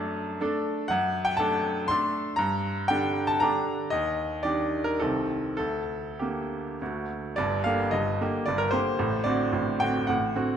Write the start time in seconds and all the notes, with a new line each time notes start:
Already playing: F#2 A3 D4 A4 A5
0.41 A3 D4 A4
0.88 F#2 F#5
1.25 G5
1.37 A3 D4 A4 A5
1.88 A3 D4 A4 C6
2.36 G2 A#5
2.88 D3 D4 G4 G5
3.27 A5
3.40 D3 D4 G4 A#5
3.90 D#2 D#5
4.43 D#3 D4 G4 D5
4.84 A#4
5.00 C2 D#3 C4 G4 A4
5.57 D2 A4
6.19 D3 A#3 G4
6.82 D2 D3 A3 F#4
7.36 G1 G2 D5
7.64 D3 A#3 G4 F5
7.91 G1 G2 D#5
8.21 D3 A#3 G4
8.46 G1 G2 D5
8.58 A#4
8.71 D3 A#3 G4 C5
8.99 A1 A2
9.24 D3 C4 F#4 D5
9.53 A1 A2
9.80 D3 C4 F#4 G5
10.07 A1 A2 F#5
10.36 D3 C4 F#4